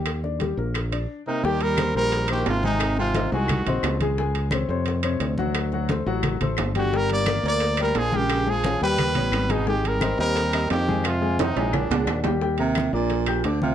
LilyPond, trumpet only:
\new Staff \with { instrumentName = "Trumpet" } { \time 4/4 \key ees \major \tempo 4 = 175 r2. r8 ees'8 | g'8 bes'4 bes'4 g'8 f'8 ees'8~ | ees'8 f'4 ges'2 r8 | r1 |
r2. r8 fis'8 | bes'8 d''4 d''4 bes'8 aes'8 g'8~ | g'8 aes'4 ces''2 ees'8 | g'8 bes'4 bes'4. g'4 |
f'4 ees'4 d'4. r8 | r1 | }